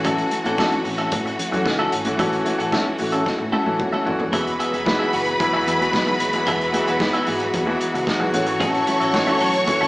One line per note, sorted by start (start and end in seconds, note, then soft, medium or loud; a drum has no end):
0.00 0.20 A1 medium
0.00 0.31 E3 medium
0.00 4.29 E3 medium
0.00 4.29 F#3 medium
0.00 0.31 A3 medium
0.00 4.29 A3 medium
0.00 0.32 C#4 medium
0.00 4.29 C#4 medium
0.00 0.32 F#4 loud
0.00 4.29 F#4 medium
0.04 0.30 C#4 medium
0.04 0.30 F#4 medium
0.04 0.30 A4 medium
0.04 0.30 E5 medium
0.04 kick loud
0.04 closed hi-hat medium
0.04 muted conga medium
0.18 closed hi-hat soft
0.31 muted clean electric guitar stroke soft
0.31 closed hi-hat medium
0.31 muted conga soft
0.44 0.56 A1 medium
0.44 1.12 E3 medium
0.44 1.12 A3 medium
0.44 0.51 C4 medium
0.44 0.57 C#4 soft
0.44 1.13 F#4 medium
0.44 0.58 F#4 medium
0.44 0.58 A4 soft
0.44 0.59 F#5 medium
0.44 closed hi-hat soft
0.52 1.16 C#4 medium
0.58 0.77 C#4 medium
0.58 0.72 F#4 loud
0.58 0.71 A4 medium
0.58 0.71 E5 medium
0.58 kick loud
0.58 snare loud
0.58 high conga medium
0.72 muted clean electric guitar stroke soft
0.72 closed hi-hat soft
0.85 1.06 A1 medium
0.85 muted clean electric guitar stroke soft
0.85 open hi-hat medium
0.98 1.11 C#4 soft
0.98 1.11 F#4 soft
0.98 1.11 A4 medium
0.98 1.12 E5 medium
0.98 closed hi-hat medium
1.12 1.33 A2 loud
1.12 muted clean electric guitar stroke soft
1.12 kick loud
1.12 closed hi-hat medium
1.12 muted conga soft
1.26 muted clean electric guitar stroke medium
1.26 closed hi-hat soft
1.39 closed hi-hat medium
1.39 low conga medium
1.51 1.63 F#2 medium
1.51 1.86 E3 medium
1.51 1.86 A3 medium
1.51 1.86 C#4 medium
1.51 1.86 F#4 loud
1.51 muted clean electric guitar stroke soft
1.51 closed hi-hat soft
1.66 1.86 C#2 medium
1.66 muted clean electric guitar stroke soft
1.66 kick loud
1.66 snare medium
1.66 high conga medium
1.79 1.92 C#4 medium
1.79 1.92 F#4 medium
1.79 1.92 A4 medium
1.79 1.92 E5 medium
1.79 high conga medium
1.92 2.13 G#1 medium
1.92 muted clean electric guitar stroke soft
1.92 closed hi-hat medium
2.04 2.13 E3 medium
2.04 2.14 A3 medium
2.04 2.14 C#4 medium
2.04 2.14 F#4 medium
2.04 muted clean electric guitar stroke soft
2.04 closed hi-hat soft
2.17 2.40 A1 loud
2.17 2.35 E3 loud
2.17 2.35 A3 medium
2.17 2.36 C#4 medium
2.17 2.44 C#4 medium
2.17 2.44 F#4 medium
2.17 2.36 F#4 medium
2.17 2.44 A4 medium
2.17 2.44 E5 medium
2.17 kick loud
2.17 closed hi-hat medium
2.17 muted conga medium
2.32 closed hi-hat soft
2.45 2.79 E3 medium
2.45 2.79 A3 medium
2.45 2.80 C#4 medium
2.45 2.80 F#4 medium
2.45 muted clean electric guitar stroke soft
2.45 closed hi-hat medium
2.45 muted conga medium
2.58 2.70 A1 loud
2.58 2.71 C#4 medium
2.58 2.71 F#4 medium
2.58 2.71 A4 medium
2.58 2.72 F#5 medium
2.58 closed hi-hat soft
2.72 2.91 C#4 medium
2.72 2.85 F#4 loud
2.72 2.84 A4 loud
2.72 2.84 E5 loud
2.72 kick medium
2.72 snare loud
2.72 high conga medium
2.85 muted clean electric guitar stroke soft
2.98 3.21 A1 medium
2.98 3.41 E3 medium
2.98 3.41 A3 medium
2.98 3.42 C#4 medium
2.98 3.42 F#4 medium
2.98 muted clean electric guitar stroke soft
2.98 open hi-hat medium
3.12 3.24 C#4 soft
3.12 3.25 F#4 soft
3.12 3.25 A4 medium
3.12 3.25 E5 medium
3.12 closed hi-hat soft
3.26 muted clean electric guitar stroke soft
3.26 muted fingered electric bass stroke soft
3.26 kick medium
3.26 snare medium
3.26 muted conga soft
3.39 3.50 A2 medium
3.39 muted clean electric guitar stroke soft
3.52 3.65 C#4 medium
3.52 3.65 F#4 medium
3.52 3.65 A4 medium
3.52 3.64 E5 medium
3.52 high tom medium
3.52 muted conga soft
3.65 3.77 A1 medium
3.65 3.91 E3 medium
3.65 3.91 A3 medium
3.65 3.92 C#4 medium
3.65 3.78 C#4 medium
3.65 3.78 F#4 medium
3.65 3.92 F#4 medium
3.65 3.78 A4 medium
3.65 3.79 E5 medium
3.65 high tom medium
3.79 muted clean electric guitar stroke soft
3.79 kick loud
3.79 mid tom medium
3.79 high conga medium
3.93 4.05 C#4 medium
3.93 4.05 F#4 medium
3.93 4.06 A4 medium
3.93 4.06 E5 medium
3.93 high conga medium
4.05 4.27 D#1 medium
4.05 4.23 E3 medium
4.05 4.23 A3 medium
4.05 4.23 C#4 medium
4.05 4.23 F#4 loud
4.05 muted clean electric guitar stroke soft
4.05 floor tom medium
4.19 muted clean electric guitar stroke soft
4.19 floor tom medium
4.32 4.54 E1 loud
4.32 4.66 E3 medium
4.32 9.88 E3 medium
4.32 9.88 F#3 medium
4.32 4.66 G#3 medium
4.32 8.30 G#3 medium
4.32 4.51 B3 medium
4.32 4.67 B3 medium
4.32 8.30 B3 medium
4.32 4.51 F#4 medium
4.32 4.67 F#4 medium
4.32 9.88 F#4 medium
4.32 4.52 G#4 medium
4.32 8.03 B4 medium
4.32 4.52 E5 medium
4.32 8.03 B5 loud
4.32 kick loud
4.32 closed hi-hat medium
4.47 closed hi-hat soft
4.59 4.72 B3 medium
4.59 4.72 F#4 medium
4.59 4.72 G#4 medium
4.59 4.72 E5 medium
4.59 closed hi-hat medium
4.73 4.94 E1 loud
4.73 4.86 B3 soft
4.73 4.86 F#4 medium
4.73 4.86 G#4 medium
4.73 4.86 E5 medium
4.73 closed hi-hat soft
4.85 5.20 E3 medium
4.85 5.20 G#3 medium
4.85 5.20 B3 medium
4.85 5.20 F#4 medium
4.85 muted clean electric guitar stroke medium
4.85 kick loud
4.85 snare loud
4.99 5.12 B3 medium
4.99 5.12 F#4 medium
4.99 5.12 G#4 medium
4.99 5.13 E5 medium
5.13 5.34 F#1 medium
5.13 5.27 B3 medium
5.13 5.27 F#4 medium
5.13 5.26 G#4 medium
5.13 5.26 F#5 medium
5.13 open hi-hat medium
5.26 muted clean electric guitar stroke soft
5.26 closed hi-hat soft
5.39 5.65 E3 medium
5.39 5.65 G#3 medium
5.39 5.65 B3 medium
5.39 5.66 E4 medium
5.39 muted clean electric guitar stroke soft
5.39 kick loud
5.39 closed hi-hat medium
5.53 5.64 E1 medium
5.53 5.66 B3 medium
5.53 5.66 F#4 medium
5.53 5.67 G#4 medium
5.53 5.67 E5 medium
5.67 5.87 E2 loud
5.67 5.85 B3 medium
5.67 5.80 F#4 medium
5.67 5.80 G#4 medium
5.67 5.79 E5 loud
5.67 closed hi-hat medium
5.79 6.14 E3 medium
5.79 6.14 G#3 medium
5.79 6.14 B3 medium
5.79 6.14 F#4 medium
5.79 muted clean electric guitar stroke soft
5.79 closed hi-hat soft
5.93 6.14 B1 medium
5.93 muted clean electric guitar stroke soft
5.93 kick loud
5.93 snare loud
6.06 muted clean electric guitar stroke soft
6.06 closed hi-hat soft
6.20 6.41 D#1 medium
6.20 closed hi-hat medium
6.33 6.59 E3 medium
6.33 6.59 G#3 medium
6.33 6.59 B3 medium
6.33 6.59 F#4 medium
6.33 muted clean electric guitar stroke soft
6.33 closed hi-hat soft
6.47 6.78 E1 loud
6.47 6.65 B3 medium
6.47 6.66 F#4 medium
6.47 6.66 G#4 loud
6.47 6.66 E5 loud
6.47 kick loud
6.47 closed hi-hat medium
6.61 closed hi-hat soft
6.72 7.07 E3 medium
6.72 7.07 G#3 medium
6.72 7.07 B3 medium
6.72 6.87 B3 medium
6.72 6.87 F#4 medium
6.72 7.08 F#4 loud
6.72 6.86 G#4 medium
6.72 6.86 E5 medium
6.72 closed hi-hat medium
6.87 7.08 E1 medium
6.87 6.99 B3 medium
6.87 7.00 F#4 medium
6.87 7.00 G#4 medium
6.87 7.00 E5 medium
6.87 closed hi-hat soft
7.00 muted clean electric guitar stroke soft
7.00 kick loud
7.00 snare loud
7.13 7.25 B3 medium
7.13 7.26 F#4 medium
7.13 7.26 G#4 medium
7.13 7.27 E5 medium
7.13 closed hi-hat soft
7.26 7.48 G#1 loud
7.26 7.52 E3 medium
7.26 7.52 G#3 medium
7.26 7.41 B3 medium
7.26 7.52 B3 medium
7.26 7.41 F#4 medium
7.26 7.53 F#4 medium
7.26 7.40 G#4 medium
7.26 7.41 F#5 medium
7.26 open hi-hat medium
7.40 muted clean electric guitar stroke soft
7.40 closed hi-hat soft
7.54 7.75 E2 medium
7.54 muted clean electric guitar stroke soft
7.54 kick loud
7.54 closed hi-hat medium
7.66 8.00 E3 medium
7.66 8.00 G#3 medium
7.66 8.01 B3 medium
7.66 8.01 F#4 loud
7.66 muted clean electric guitar stroke soft
7.81 closed hi-hat medium
7.94 8.04 C#2 loud
7.94 muted clean electric guitar stroke soft
7.94 closed hi-hat soft
8.07 muted clean electric guitar stroke soft
8.07 kick loud
8.07 snare medium
8.19 8.31 B1 medium
8.19 8.31 E3 medium
8.19 8.34 G#3 medium
8.19 8.34 B3 medium
8.19 8.33 F#4 loud
8.19 muted clean electric guitar stroke medium
8.33 8.44 A1 medium
8.33 8.97 E3 medium
8.33 8.97 A3 medium
8.33 9.88 A3 medium
8.33 9.88 C#4 medium
8.33 8.98 C#4 medium
8.33 8.98 F#4 loud
8.33 9.88 C#5 medium
8.33 9.88 C#6 medium
8.33 closed hi-hat medium
8.46 8.57 G#1 medium
8.46 muted clean electric guitar stroke soft
8.46 closed hi-hat soft
8.60 8.81 A1 loud
8.60 8.80 C#4 medium
8.60 8.80 F#4 medium
8.60 8.81 A4 loud
8.60 8.81 E5 medium
8.60 kick loud
8.60 closed hi-hat medium
8.60 muted conga medium
8.75 closed hi-hat soft
8.87 9.00 C#4 medium
8.87 9.00 F#4 medium
8.87 8.99 A4 medium
8.87 8.99 E5 medium
8.87 closed hi-hat medium
8.87 muted conga medium
9.00 9.21 A1 loud
9.00 9.13 C#4 medium
9.00 9.13 F#4 medium
9.00 9.13 A4 medium
9.00 9.13 E5 medium
9.00 closed hi-hat soft
9.13 9.47 E3 medium
9.13 9.47 A3 medium
9.13 9.48 C#4 medium
9.13 9.48 F#4 medium
9.13 muted clean electric guitar stroke soft
9.13 kick loud
9.13 snare loud
9.13 high conga medium
9.27 9.39 C#4 medium
9.27 9.40 F#4 medium
9.27 9.40 A4 medium
9.27 9.41 E5 medium
9.27 closed hi-hat soft
9.40 9.61 B1 medium
9.40 9.55 C#4 medium
9.40 9.53 F#4 medium
9.40 9.53 A4 medium
9.40 9.53 F#5 medium
9.40 open hi-hat medium
9.54 muted clean electric guitar stroke soft
9.54 closed hi-hat soft
9.66 9.88 E3 medium
9.66 9.88 A3 medium
9.66 9.88 C#4 medium
9.66 9.88 F#4 medium
9.66 muted clean electric guitar stroke soft
9.66 kick loud
9.66 closed hi-hat medium
9.66 muted conga medium
9.81 9.88 A1 medium
9.81 9.88 C#4 medium
9.81 9.88 F#4 medium
9.81 9.88 A4 medium
9.81 9.88 E5 medium
9.81 closed hi-hat soft